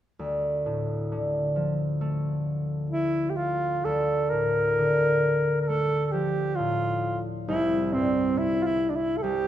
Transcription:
0.19 harp D2
0.66 harp A2
1.12 harp D3
1.56 harp F3
2.01 harp A3
2.90 alto saxophone E4
3.30 alto saxophone G4
3.36 alto saxophone F4
3.85 harp D2, alto saxophone A4
4.30 harp A2, alto saxophone A#4
4.79 harp D3
5.62 alto saxophone A#4
5.68 harp A3, alto saxophone A4
6.06 alto saxophone A4
6.12 harp F3, alto saxophone G4
6.56 harp A2, alto saxophone F4
7.48 harp C2, alto saxophone E4
7.93 harp G2, alto saxophone C4
8.37 harp C3, alto saxophone E4
8.62 alto saxophone E4 F4
8.90 alto saxophone D4
8.96 alto saxophone E4
9.17 alto saxophone A4
9.23 harp C2, alto saxophone G4

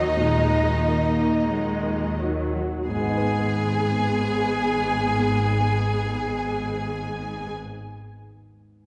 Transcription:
Already playing: grand piano D#2 F#3 A#3 D#4 F4, double bass section D#2, harp D#3, cello section D#3, viola section F#3, cello D#4, french horn section D#4, violin section D#5, flute section D#5
0.15 grand piano A#2, viola section G#3
0.49 grand piano D#4
0.80 viola section A#3, grand piano F4
1.16 grand piano D#4
1.48 grand piano F#3, viola section G#3
1.83 grand piano A#3
2.18 viola section F#3, grand piano D#4
2.53 grand piano F#3
2.88 double bass section G#1, grand piano G#2, cello section G#2, harp G#2, french horn section G#3, viola section B3 G#4, cello G#4, flute section G#5, violin section G#5
2.95 grand piano G#3, harp G#3
3.02 grand piano B3, harp B3
3.09 grand piano D#4, harp D#4
3.16 grand piano B4, harp B4

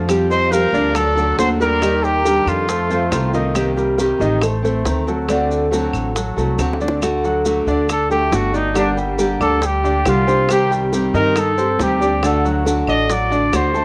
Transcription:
Already playing: upright bass F2, grand piano F3 F4 F5
0.08 nylon-string guitar F3 G3 C4 G4, high bongo, claves, maracas
0.30 grand piano C4 C5, trumpet C5, violin section D#5, high bongo, maracas
0.52 nylon-string guitar F3 G3 C4 G4, trumpet A#4, violin section F5, high bongo, maracas
0.73 upright bass D2, grand piano D3 D4 D5, high bongo, maracas
0.94 grand piano F#3 F#4 A4, trumpet A4, violin section D5, muted nylon-string guitar stroke, high bongo, claves, maracas
1.15 grand piano F#3 F#4 A4, nylon-string guitar A3 D4 F#4, maracas
1.37 upright bass D#2, nylon-string guitar D3 A3 D4 F#4, trumpet C5, violin section F#5, high bongo, low bongo, maracas
1.60 grand piano G3 G4 A#4, nylon-string guitar A3 D4 F#4, trumpet A#4, violin section D5, high bongo, maracas
1.81 nylon-string guitar D#3 G3 G4, grand piano D#3 D#5, high bongo, claves, maracas
2.03 trumpet G4, violin section A#4, high bongo, maracas
2.25 nylon-string guitar D#3 G3 D4 G4, grand piano G3 G4 A#4, high bongo, maracas
2.46 upright bass F2, trumpet F4, violin section A4, claves, maracas
2.68 grand piano A3 A4 C5, muted nylon-string guitar stroke, high bongo, maracas
2.90 grand piano A3 A4 C5, nylon-string guitar A3 C4 F4, high bongo, maracas
3.11 upright bass C2, nylon-string guitar C3 D#3 A3 C4 F4, high bongo, low bongo, claves, maracas
3.33 grand piano D#3 D#4 D#5, nylon-string guitar A3 C4 F4, high bongo, maracas
3.54 nylon-string guitar C3 D#3 A#3 C4 G4, high bongo, claves, maracas
3.77 grand piano G3 G4 A#4, high bongo, maracas
3.98 nylon-string guitar C3 D#3 A#3 C4 G4, high bongo, maracas
4.20 upright bass A1, grand piano D#3 D#4 D#5, high bongo, maracas
4.42 grand piano A3 A4 C5, muted nylon-string guitar stroke, high bongo, claves, maracas
4.63 grand piano A3 A4 C5, nylon-string guitar A3 C4, maracas
4.85 upright bass D2, nylon-string guitar D#3 A3 C4, high bongo, low bongo, maracas
5.07 grand piano F#3 F#4 A4, nylon-string guitar A3 C4, high bongo, maracas
5.28 nylon-string guitar D3 A3 C4 F#4, grand piano D3 D4 D5, high bongo, claves, maracas
5.50 high bongo, maracas
5.71 nylon-string guitar D3 A3 C4 F#4, grand piano F#3 F#4 A4, high bongo, maracas
5.93 upright bass A1, claves, maracas
6.15 grand piano F#3 F#4 A4, muted nylon-string guitar stroke, high bongo, maracas
6.36 upright bass C2, grand piano F#3 F#4 A4, nylon-string guitar A3 C4 F#4, high bongo, maracas
6.58 upright bass D2, nylon-string guitar D3 A3 C4 F#4, high bongo, claves, maracas
6.73 high bongo
6.80 grand piano D3 D4 D5, nylon-string guitar A3 C4 F#4, maracas
6.88 low bongo
7.01 nylon-string guitar D3 A3 D4 F#4, high bongo, claves, maracas
7.24 grand piano F#3 F#4 F#5, high bongo, maracas
7.45 nylon-string guitar D3 A3 D4 F#4, high bongo, maracas
7.66 upright bass D2, grand piano D3 D4 D5, high bongo, maracas
7.89 trumpet A4, muted nylon-string guitar stroke, high bongo, claves, maracas
8.10 grand piano A3 A4 A5, nylon-string guitar A3 D4 F#4, trumpet G4, maracas
8.31 upright bass G1, nylon-string guitar D3 A3 D4 F#4, trumpet F#4, high bongo, low bongo, maracas
8.54 nylon-string guitar A3 D4 F#4, grand piano D4 D5 D6, trumpet D#4, high bongo, maracas
8.74 nylon-string guitar D3 G3 A#3 D4 G4, grand piano D3 D4 D5, trumpet D4, high bongo, claves, maracas
8.97 grand piano G3 G4 G5, high bongo, maracas
9.18 nylon-string guitar D3 G3 A#3 D4 G4, high bongo, maracas
9.40 upright bass D2, grand piano D4 D5 D6, trumpet A4, claves, maracas
9.61 grand piano G3 G4 G5, muted nylon-string guitar stroke, high bongo, maracas
9.66 trumpet G4
9.83 grand piano D3 D4 D5, nylon-string guitar A#3 D4 G4, high bongo, maracas
10.05 upright bass C2, nylon-string guitar D3 G3 A#3 D4 G4, trumpet F4, high bongo, low bongo, claves, maracas
10.27 nylon-string guitar A#3 D4 G4, grand piano C4 C5 C6, high bongo, maracas
10.48 nylon-string guitar C3 D#3 G3 C4 G4, trumpet G4, high bongo, claves, maracas
10.71 grand piano G3 G4 G5, high bongo, maracas
10.92 nylon-string guitar C3 D#3 G3 C4 G4, high bongo, maracas
11.14 upright bass G2, grand piano D#3 D#4 D#5, trumpet A#4, high bongo, maracas
11.36 trumpet A4, muted nylon-string guitar stroke, high bongo, claves, maracas
11.58 nylon-string guitar G3 C4 G4, grand piano C4 C5 C6, maracas
11.79 upright bass D2, nylon-string guitar C3 D#3 G3 C4 G4, trumpet G4, high bongo, low bongo, maracas
12.01 nylon-string guitar G3 C4 G4, grand piano D4 D5 D6, high bongo, maracas
12.23 nylon-string guitar D3 A3 D4 F#4, grand piano D3 D4 D5, trumpet A4, high bongo, claves, maracas
12.45 grand piano F#3 F#4 F#5, high bongo, maracas
12.65 nylon-string guitar D3 A3 D4 F#4, high bongo, maracas
12.87 upright bass A1, grand piano D4 D5 D6, trumpet D#5, claves, maracas
13.09 grand piano F#3 F#4 F#5, trumpet D5, muted nylon-string guitar stroke, high bongo, maracas
13.30 grand piano D3 D4 D5, nylon-string guitar A3 D4 F#4, high bongo, maracas
13.52 upright bass D2, nylon-string guitar D3 A3 D4 F#4, trumpet C5, high bongo, low bongo, claves, maracas
13.74 grand piano A3 A4 A5, nylon-string guitar A3 D4 F#4, high bongo, maracas

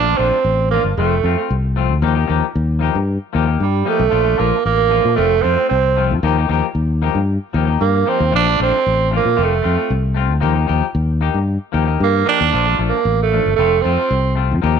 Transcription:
Already playing: fingered electric bass A#1, tenor saxophone D4
0.06 clean electric guitar A3 D4 F4
0.17 fingered electric bass A#1, clean electric guitar F3 A3 D4 F4, tenor saxophone C4
0.44 fingered electric bass A1
0.71 clean electric guitar F3 D4 F4, tenor saxophone A#3
0.84 fingered electric bass G1
0.97 fingered electric bass F1, clean electric guitar F3 A3 C4 F4, tenor saxophone A3
1.24 fingered electric bass F2, clean electric guitar F3 A3 C4 F4
1.38 clean electric guitar C4 F4, muted clean electric guitar stroke
1.50 fingered electric bass C2
1.76 clean electric guitar F3 A3 C4 F4
1.91 fingered electric bass D2
2.02 fingered electric bass D#2, clean electric guitar F3 A#3 D#4 G4
2.15 clean electric guitar A#3 D#4 G4
2.27 fingered electric bass D#2, clean electric guitar F3 A#3 D#4 G4
2.55 fingered electric bass D#2
2.79 clean electric guitar F3 A#3 D#4 G4
2.95 fingered electric bass G2
3.33 fingered electric bass D#2, clean electric guitar F3 A#3 D#4 G4
3.47 clean electric guitar A#3 D#4
3.60 fingered electric bass G2, tenor saxophone G3
3.85 clean electric guitar F3 A#3 D#4 G4, tenor saxophone A3
3.99 fingered electric bass B1
4.10 fingered electric bass A#1, clean electric guitar F3 A3 D4 F4
4.24 clean electric guitar A3 D4 F4
4.38 fingered electric bass A#1, clean electric guitar F3 A3 D4 F4, tenor saxophone A#3
4.65 fingered electric bass A1, tenor saxophone A#3
4.89 clean electric guitar F3 A3 D4 F4
5.05 fingered electric bass A#2
5.15 fingered electric bass F1, clean electric guitar F3 A3 C4 F4, tenor saxophone A3
5.42 fingered electric bass F2, clean electric guitar F3 A3 C4 F4, tenor saxophone C4
5.57 clean electric guitar A3 C4 F4
5.69 fingered electric bass C2, tenor saxophone C4
5.97 clean electric guitar F3 A3 C4 F4
6.11 fingered electric bass F2
6.23 fingered electric bass D#2, clean electric guitar F3 A#3 D#4 G4
6.38 clean electric guitar A#3 D#4 G4
6.49 fingered electric bass D#2, clean electric guitar F3 A#3 D#4 G4
6.75 fingered electric bass D#2
7.02 clean electric guitar F3 A#3 D#4 G4
7.15 fingered electric bass G2
7.53 fingered electric bass D#2, clean electric guitar F3 A#3 D#4 G4
7.65 clean electric guitar A#3 D#4 G4
7.80 fingered electric bass G2, tenor saxophone A#3
8.05 clean electric guitar F3 A#3 D#4 G4, tenor saxophone C4
8.20 fingered electric bass D#2
8.31 fingered electric bass A#1, clean electric guitar F3 A3 D4 F4
8.36 tenor saxophone D4
8.46 clean electric guitar A3 D4 F4
8.59 fingered electric bass A#1, clean electric guitar F3 A3 D4 F4, tenor saxophone C4
8.86 fingered electric bass A1
9.11 clean electric guitar F3 A3 D4 F4
9.16 tenor saxophone A#3
9.25 fingered electric bass A#2
9.36 fingered electric bass F1, clean electric guitar A3 C4 F4
9.44 tenor saxophone A3
9.62 fingered electric bass F2, clean electric guitar A3 C4 F4
9.75 clean electric guitar C4 F4
9.90 fingered electric bass C2
10.14 clean electric guitar A3 C4 F4
10.31 fingered electric bass D2
10.40 fingered electric bass D#2, clean electric guitar F3 A#3 D#4 G4
10.53 clean electric guitar A#3 D#4 G4
10.67 fingered electric bass D#2, clean electric guitar F3 D#4 G4
10.95 fingered electric bass D#2
11.21 clean electric guitar A#3 D#4 G4, muted clean electric guitar stroke
11.34 fingered electric bass G2
11.72 fingered electric bass D#2, clean electric guitar F3 A#3 D#4 G4
11.85 clean electric guitar A#3 D#4 G4
12.00 fingered electric bass G2, tenor saxophone A#3
12.25 clean electric guitar F3 A#3 D#4 G4, tenor saxophone D4
12.41 fingered electric bass D#2
12.52 fingered electric bass A#1, clean electric guitar F3 A3 D4 F4
12.66 clean electric guitar A3 D4 F4
12.78 fingered electric bass A#1, clean electric guitar F3 A3 D4
12.88 tenor saxophone A#3
13.05 fingered electric bass A1
13.22 tenor saxophone A3
13.32 clean electric guitar F3 A3 D4, muted clean electric guitar stroke
13.46 fingered electric bass G1
13.56 fingered electric bass F1, tenor saxophone A3, clean electric guitar A3 C4 F4
13.81 fingered electric bass F2, clean electric guitar A3, tenor saxophone C4
13.85 clean electric guitar C4 F4
13.97 clean electric guitar C4 F4
14.10 fingered electric bass C2
14.35 clean electric guitar A3 C4 F4
14.51 fingered electric bass F2
14.62 fingered electric bass D#2, clean electric guitar F3 A#3 D#4 G4
14.77 clean electric guitar G4

